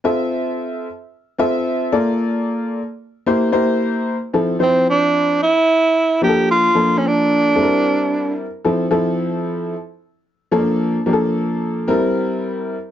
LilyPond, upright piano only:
\new Staff \with { instrumentName = "Upright piano" } { \time 4/4 \key f \major \tempo 4 = 112 <c' f' a' e''>4. r4 <c' f' a' e''>4 <bes f' a' d''>8~ | <bes f' a' d''>4 r4 <bes e' g' c''>8 <bes e' g' c''>4 r8 | <f c' e' a'>8 <f c' e' c''>4. r4. <f bes d' g' a'>8~ | <f bes d' g' a'>8 <f bes d' a'>4. <g c' e' a' bes'>4. r8 |
<f c' e' a'>8 <f c' e' a'>4. r4. <f bes des' d' a'>8~ | <f bes des' d' a'>8 <f bes d' g' a'>4. <g c' e' bes'>4. r8 | }